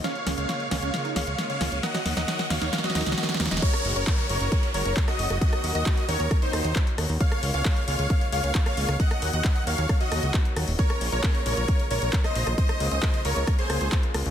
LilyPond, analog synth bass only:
\new Staff \with { instrumentName = "Analog synth bass" } { \clef bass \time 4/4 \key ees \dorian \tempo 4 = 134 r8 des,16 des,16 r8 des,16 des,16 r8 des,16 des,16 r8 des,16 des,16 | r8 ees,16 ees,16 r8 ees,16 ees,16 r8 ees,16 des,16 r8 ees,16 ees,,16 | r8 ges,,16 ges,,16 r8 ges,,16 ges,,16 r8 ges,,16 ges,,16 r8 ges,,16 ges,,16 | r8 ees,16 ees,16 r8 ees,16 ees,16 r8 ees,16 ees,16 r8 ees,16 ees,16 |
r8 des,16 des,16 r8 des,16 des,16 r8 des,16 des,16 r8 des,16 des,16 | r8 ees,16 ees,16 r8 ees,16 ees,16 r8 ees,16 des,16 r8 ees,16 ees,,16 | r8 bes,,16 bes,,16 r8 bes,,16 bes,,16 r8 bes,,16 bes,,16 r8 bes,,16 bes,,16 | r8 des,16 des,16 r8 des,16 des,16 r8 des,16 des,16 r8 des,16 des,16 | }